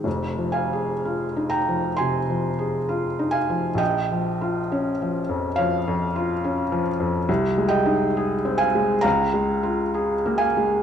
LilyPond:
<<
  \new Staff \with { instrumentName = "Felt piano" } { \time 4/4 \key f \minor \tempo 4 = 67 r8 <f'' aes''>4 <g'' bes''>8 <aes'' c'''>4. <f'' aes''>8 | <ees'' g''>2 <des'' f''>4. r8 | r8 <ees'' g''>4 <f'' aes''>8 <f'' bes''>4. <f'' aes''>8 | }
  \new Staff \with { instrumentName = "Felt piano" } { \clef bass \time 4/4 \key f \minor \tuplet 3/2 { <f,, f,>8 f8 aes'8 f'8 ees'8 f8 c8 f8 aes'8 f'8 ees'8 f8 } | \tuplet 3/2 { bes,,8 f8 f'8 des'8 f8 f,8 f8 f,8 f'8 des'8 f8 f,8 } | \tuplet 3/2 { c,8 aes8 ees'8 aes'8 c'8 aes8 des,8 aes8 f'8 aes'8 bes8 aes8 } | }
>>